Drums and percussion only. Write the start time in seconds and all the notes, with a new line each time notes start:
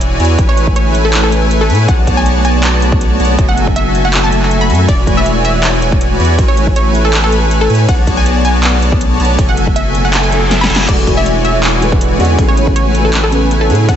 0.01 closed hi-hat
0.20 closed hi-hat
0.25 closed hi-hat
0.39 kick, closed hi-hat
0.57 closed hi-hat
0.67 kick
0.76 closed hi-hat
0.95 closed hi-hat
1.14 clap, closed hi-hat
1.32 closed hi-hat
1.51 closed hi-hat
1.70 closed hi-hat
1.75 closed hi-hat
1.89 kick, closed hi-hat
2.07 kick, closed hi-hat
2.26 closed hi-hat
2.45 closed hi-hat
2.64 clap, closed hi-hat
2.82 closed hi-hat
2.92 kick
3.01 closed hi-hat
3.20 closed hi-hat
3.25 closed hi-hat
3.39 kick, closed hi-hat
3.57 closed hi-hat
3.67 kick
3.76 closed hi-hat
3.95 closed hi-hat
4.14 clap, closed hi-hat
4.32 closed hi-hat
4.42 clap
4.51 closed hi-hat
4.70 closed hi-hat
4.75 closed hi-hat
4.88 kick, closed hi-hat, ride
5.07 kick, closed hi-hat
5.26 closed hi-hat
5.45 closed hi-hat
5.64 clap, closed hi-hat
5.82 closed hi-hat
5.92 kick
6.01 closed hi-hat
6.20 closed hi-hat
6.25 closed hi-hat
6.39 kick, closed hi-hat, ride
6.57 closed hi-hat
6.67 kick
6.76 closed hi-hat
6.95 closed hi-hat
7.14 clap, closed hi-hat
7.32 closed hi-hat
7.51 closed hi-hat
7.70 closed hi-hat
7.75 closed hi-hat
7.89 kick, closed hi-hat, ride
8.07 kick, closed hi-hat
8.26 closed hi-hat
8.45 closed hi-hat
8.64 clap, closed hi-hat
8.82 closed hi-hat
8.92 kick
9.01 closed hi-hat
9.20 closed hi-hat
9.25 closed hi-hat
9.39 kick, closed hi-hat, ride
9.57 closed hi-hat
9.67 kick
9.76 closed hi-hat
9.95 closed hi-hat
10.14 clap, closed hi-hat
10.32 closed hi-hat
10.51 snare, closed hi-hat
10.64 snare
10.70 closed hi-hat
10.75 snare, closed hi-hat
10.89 kick, closed hi-hat, crash, ride
11.07 kick, closed hi-hat
11.26 closed hi-hat
11.45 closed hi-hat
11.64 clap, closed hi-hat
11.82 closed hi-hat
11.92 kick
12.01 closed hi-hat
12.20 closed hi-hat
12.25 closed hi-hat
12.38 kick, closed hi-hat, ride
12.57 closed hi-hat
12.67 kick
12.76 closed hi-hat
12.95 closed hi-hat
13.14 clap, closed hi-hat
13.32 closed hi-hat
13.51 closed hi-hat
13.70 closed hi-hat
13.75 closed hi-hat
13.89 kick, closed hi-hat, ride